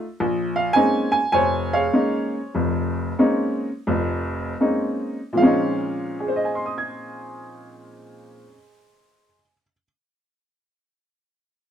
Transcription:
0.20 0.69 A#1 medium
0.56 0.73 F5 medium
0.73 1.18 G#3 medium
0.73 1.18 A#3 soft
0.73 1.17 C4 medium
0.73 1.18 C#4 soft
0.73 1.18 D#4 medium
0.73 1.10 G#5 loud
1.12 1.31 G#5 medium
1.32 1.85 F1 medium
1.32 2.50 C5 medium
1.32 1.72 C#5 medium
1.32 1.75 G#5 loud
1.73 2.94 G#4 medium
1.73 2.93 C#5 medium
1.73 2.30 F5 medium
1.93 2.37 G#3 soft
1.93 2.37 A#3 soft
1.93 2.37 C#4 soft
1.93 2.37 D#4 medium
2.55 3.10 F1 medium
2.55 3.11 F2 medium
3.19 3.67 G#3 soft
3.19 3.67 A#3 medium
3.19 3.67 C4 soft
3.19 3.67 C#4 soft
3.19 3.68 D#4 medium
3.87 4.52 F1 medium
3.87 4.52 F2 medium
4.60 5.17 G#3 soft
4.60 5.17 A#3 soft
4.60 5.17 C4 soft
4.60 5.17 C#4 soft
4.60 5.17 D#4 medium
5.33 8.42 A#2 medium
5.33 8.45 F3 medium
5.37 8.47 G#3 medium
5.37 8.50 C4 medium
5.37 8.43 F5 medium
5.43 8.53 C#4 medium
5.43 8.55 D#4 medium
6.20 9.26 G#4 soft
6.28 9.34 C5 soft
6.36 9.42 D#5 soft
6.45 9.51 G#5 soft
6.55 9.61 C6 soft
6.66 9.71 D#6 soft
6.78 9.84 G#6 soft

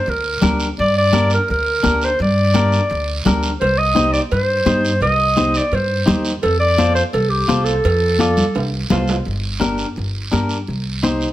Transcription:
0.00 0.11 C5 medium
0.06 0.36 D2 loud
0.06 0.44 A#4 medium
0.06 high conga soft
0.06 long guiro medium
0.42 0.71 D2 medium
0.42 0.67 D4 medium
0.42 0.67 G4 medium
0.42 0.68 A#4 medium
0.42 high conga medium
0.42 low conga medium
0.42 short guiro medium
0.60 short guiro medium
0.77 1.35 G2 loud
0.77 0.95 D5 loud
0.77 high conga soft
0.77 long guiro medium
0.98 1.30 D5 loud
1.13 1.38 D4 medium
1.13 1.38 G4 medium
1.13 1.38 A#4 medium
1.13 high conga medium
1.13 short guiro medium
1.30 1.49 A#4 medium
1.30 short guiro medium
1.48 1.78 D2 medium
1.48 2.06 A#4 medium
1.48 high conga soft
1.48 long guiro medium
1.83 2.13 D2 loud
1.83 2.08 D4 medium
1.83 2.09 G4 medium
1.83 2.09 A#4 medium
1.83 high conga medium
1.83 short guiro medium
2.01 2.21 C5 medium
2.01 short guiro medium
2.19 2.76 G2 loud
2.19 3.23 D5 medium
2.19 high conga soft
2.19 long guiro medium
2.54 2.79 D4 medium
2.54 2.79 G4 medium
2.54 2.80 A#4 medium
2.54 high conga medium
2.54 short guiro medium
2.72 short guiro medium
2.90 3.19 D2 loud
2.90 high conga soft
2.90 long guiro medium
3.26 3.55 D2 medium
3.26 3.50 D4 medium
3.26 3.51 G4 medium
3.26 3.51 A#4 medium
3.26 high conga medium
3.26 low conga medium
3.26 short guiro medium
3.43 short guiro medium
3.60 4.18 C2 medium
3.60 3.79 C5 loud
3.60 cowbell loud
3.60 high conga soft
3.60 long guiro medium
3.78 4.12 D#5 loud
3.95 4.20 D#4 medium
3.95 4.20 G4 medium
3.95 4.21 C5 medium
3.95 high conga medium
3.95 short guiro medium
4.13 4.21 D5 medium
4.13 short guiro medium
4.31 4.60 G2 medium
4.31 4.98 C5 medium
4.31 cowbell medium
4.31 high conga soft
4.31 long guiro medium
4.66 4.94 G2 loud
4.66 4.91 D#4 medium
4.66 4.91 G4 medium
4.66 4.91 C5 medium
4.66 high conga medium
4.66 short guiro medium
4.85 short guiro medium
5.01 5.58 C2 medium
5.01 5.59 D#5 loud
5.01 cowbell loud
5.01 high conga soft
5.01 long guiro medium
5.37 5.62 D#4 medium
5.37 5.62 G4 medium
5.37 5.62 C5 medium
5.37 high conga medium
5.37 short guiro medium
5.54 5.76 D5 medium
5.54 short guiro medium
5.72 6.00 G2 medium
5.72 6.09 C5 medium
5.72 cowbell medium
5.72 high conga soft
5.72 long guiro medium
6.06 6.36 D#2 loud
6.06 6.32 D#4 medium
6.06 6.32 G4 medium
6.06 6.32 C5 medium
6.06 high conga medium
6.06 low conga medium
6.06 short guiro medium
6.25 short guiro medium
6.43 7.00 F2 loud
6.43 6.59 A4 loud
6.43 cowbell medium
6.43 high conga soft
6.43 long guiro medium
6.60 6.93 D5 loud
6.78 7.03 F4 medium
6.78 7.03 A4 medium
6.78 7.03 C5 medium
6.78 high conga medium
6.78 short guiro medium
6.95 7.03 C5 loud
6.95 short guiro medium
7.13 7.42 C2 loud
7.13 7.31 A4 medium
7.13 cowbell medium
7.13 high conga soft
7.13 long guiro medium
7.29 7.65 G4 medium
7.48 7.77 C2 loud
7.48 7.74 F4 medium
7.48 7.74 A4 medium
7.48 7.74 C5 medium
7.48 high conga medium
7.48 short guiro medium
7.64 8.89 A4 medium
7.64 short guiro medium
7.84 8.41 F2 loud
7.84 cowbell loud
7.84 high conga soft
7.84 long guiro medium
8.19 8.45 F4 medium
8.19 8.45 A4 medium
8.19 8.45 D5 medium
8.19 high conga medium
8.19 short guiro medium
8.37 low conga medium
8.37 short guiro medium
8.55 8.84 C2 medium
8.55 cowbell medium
8.55 high conga soft
8.55 high timbale medium
8.55 long guiro medium
8.90 9.19 C2 medium
8.90 9.15 F4 medium
8.90 9.16 A4 medium
8.90 9.16 C5 loud
8.90 high conga medium
8.90 low conga medium
8.90 low timbale loud
8.90 short guiro medium
9.08 low timbale loud
9.08 short guiro medium
9.25 9.83 G1 medium
9.25 high conga soft
9.25 long guiro medium
9.60 9.85 D4 medium
9.60 9.85 G4 medium
9.60 9.86 A#4 medium
9.60 high conga medium
9.60 short guiro medium
9.78 short guiro medium
9.96 10.25 G1 medium
9.96 high conga soft
9.96 long guiro medium
10.32 10.61 G2 medium
10.32 10.57 D4 medium
10.32 10.57 G4 medium
10.32 10.57 A#4 medium
10.32 high conga medium
10.32 short guiro medium
10.49 short guiro medium
10.67 11.24 C2 medium
10.67 high conga soft
10.67 long guiro medium
11.03 11.28 D#4 medium
11.03 11.28 G4 medium
11.03 11.28 C5 medium
11.03 high conga medium
11.03 short guiro medium
11.21 short guiro medium

